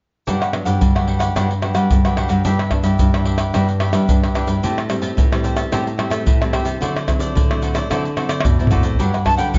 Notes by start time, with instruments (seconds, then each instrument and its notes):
0.27 nylon-string guitar G2 F#3 B3 D4, cavaquinho D4 G4 B4 F#5, pandeiro, shaker, surdo
0.41 cavaquinho G4 B4 F#5, pandeiro, tamborim, shaker
0.53 nylon-string guitar F#3 B3 D4, muted cavaquinho stroke, pandeiro, tamborim
0.65 nylon-string guitar G2, cavaquinho G4 B4 F#5, pandeiro, shaker
0.81 nylon-string guitar G2 D3, pandeiro, shaker, surdo
0.95 nylon-string guitar F#3 B3 D4, cavaquinho G4 B4 F#5, pandeiro, tamborim, shaker
1.07 cavaquinho D4 G4 B4 F#5, pandeiro
1.19 cavaquinho G4 B4 F#5, pandeiro, tamborim, shaker
1.35 nylon-string guitar G2 F#3 B3 D4, cavaquinho D4 G4 B4 F#5, pandeiro, tamborim, shaker, surdo
1.50 muted cavaquinho stroke, pandeiro, shaker
1.62 nylon-string guitar F#3 B3 D4, cavaquinho D4 G4 B4 F#5, pandeiro, tamborim
1.74 nylon-string guitar G3, cavaquinho G4 B4 F#5, pandeiro, tamborim, shaker
1.90 nylon-string guitar G2 D3, pandeiro, shaker, surdo
2.05 nylon-string guitar F#3 B3 D4, cavaquinho G4 B4 F#5, pandeiro, tamborim, shaker
2.17 cavaquinho D4 G4 B4 F#5, pandeiro, tamborim
2.29 nylon-string guitar G2, cavaquinho G4 B4 F#5, pandeiro, shaker
2.45 nylon-string guitar G2 E3 B3 D4, cavaquinho D4 G4 B4 E5, pandeiro, shaker, surdo
2.59 cavaquinho G4 B4 E5, pandeiro, tamborim, shaker
2.71 nylon-string guitar E3 B3 D4, muted cavaquinho stroke, pandeiro, tamborim, surdo
2.83 nylon-string guitar G2, cavaquinho G4 B4 E5, pandeiro, shaker
2.99 nylon-string guitar G2, pandeiro, shaker, surdo
3.14 nylon-string guitar E3 B3 D4, cavaquinho G4 B4 E5, pandeiro, tamborim, shaker
3.25 cavaquinho D4 G4 B4 E5, pandeiro
3.38 cavaquinho G4 B4 E5, pandeiro, tamborim, shaker
3.54 nylon-string guitar G2 E3 B3 D4, cavaquinho D4 G4 B4 E5, pandeiro, tamborim, shaker, surdo
3.68 muted cavaquinho stroke, pandeiro, shaker
3.80 cavaquinho D4 G4 B4 E5, pandeiro, tamborim
3.93 nylon-string guitar E3 G3 B3 D4, cavaquinho G4 B4 E5, pandeiro, tamborim, shaker
4.08 nylon-string guitar G2 E3 B3 D4, pandeiro, shaker, surdo
4.23 cavaquinho G4 B4 E5, pandeiro, tamborim, shaker
4.35 nylon-string guitar E3 B3 D4, cavaquinho D4 G4 B4 E5, pandeiro, tamborim
4.47 nylon-string guitar G2, cavaquinho G4 B4 E5, pandeiro, shaker
4.63 nylon-string guitar A2 G3 C4 E4, cavaquinho G4 C5 E5 A5, pandeiro, shaker, surdo
4.78 cavaquinho C5 E5 A5, pandeiro, tamborim, shaker
4.89 nylon-string guitar G3 C4 E4, muted cavaquinho stroke, pandeiro, tamborim, shaker
5.02 nylon-string guitar A2, cavaquinho C5 E5 A5, pandeiro, shaker
5.17 nylon-string guitar A2 E3, pandeiro, shaker, surdo
5.32 nylon-string guitar G3 C4 E4, cavaquinho C5 E5 A5, pandeiro, tamborim, shaker
5.44 cavaquinho G4 C5 E5 A5, pandeiro, shaker
5.57 cavaquinho C5 E5 A5, pandeiro, tamborim, shaker
5.72 nylon-string guitar A2 G3 C4 E4, cavaquinho G4 C5 E5 A5, pandeiro, tamborim, shaker, surdo
5.87 muted cavaquinho stroke, pandeiro, shaker
5.98 nylon-string guitar G3 C4 E4, cavaquinho G4 C5 E5 A5, pandeiro, tamborim
6.10 nylon-string guitar A3, cavaquinho C5 E5 A5, pandeiro, tamborim, shaker
6.26 nylon-string guitar A2 E3, pandeiro, shaker, surdo
6.41 nylon-string guitar G3 C4 E4, cavaquinho C5 E5 A5, pandeiro, tamborim, shaker
6.53 cavaquinho G4 C5 E5 A5, pandeiro, tamborim
6.65 nylon-string guitar C3, cavaquinho C5 E5 A5, pandeiro, shaker
6.81 nylon-string guitar D3 F#3 C4 E4, cavaquinho F#4 A4 C5 D5, pandeiro, shaker, surdo
6.96 cavaquinho A4 C5 D5, pandeiro, tamborim, shaker
7.07 nylon-string guitar F#3 C4 E4, muted cavaquinho stroke, pandeiro, tamborim, shaker, surdo
7.19 nylon-string guitar D3, cavaquinho A4 C5 D5, pandeiro, shaker
7.35 nylon-string guitar A2 D3, pandeiro, shaker, surdo
7.50 nylon-string guitar F#3 C4 E4, cavaquinho A4 C5 D5, pandeiro, tamborim, shaker
7.62 cavaquinho F#4 A4 C5 D5, pandeiro, shaker
7.74 nylon-string guitar F#3 C4 E4, cavaquinho A4 C5 D5, pandeiro, tamborim, shaker
7.90 nylon-string guitar D3 F#3 C4 E4, cavaquinho F#4 A4 C5 D5, pandeiro, tamborim, shaker, surdo
8.05 muted cavaquinho stroke, pandeiro, shaker
8.16 nylon-string guitar F#3 C4 E4, cavaquinho F#4 A4 C5 D5, pandeiro, tamborim
8.29 nylon-string guitar D3, cavaquinho A4 C5 D5, pandeiro, tamborim, shaker
8.40 tamborim
8.45 nylon-string guitar A2 B2, pandeiro, shaker, surdo
8.49 surdo
8.59 nylon-string guitar F#3 C4 E4, cavaquinho A4 C5 D5, surdo, pandeiro, shaker
8.67 nylon-string guitar A2, cavaquinho F#4, surdo, pandeiro, shaker
8.71 cavaquinho A4 C5 D5
8.76 surdo
8.83 cavaquinho A4 C5 D5, pandeiro, shaker
8.95 cavaquinho D4, surdo
8.99 nylon-string guitar G2 F#3 B3 D4, cavaquinho G4 B4 F#5, pandeiro, shaker, surdo
9.13 cavaquinho G4 B4 F#5, pandeiro, tamborim, shaker
9.25 nylon-string guitar F#3 B3 D4, flute A5, muted cavaquinho stroke, pandeiro, tamborim, surdo
9.37 nylon-string guitar D3, cavaquinho G4 B4 F#5, flute G5, pandeiro, shaker
9.53 nylon-string guitar G2 D3, flute F#5, pandeiro, shaker, surdo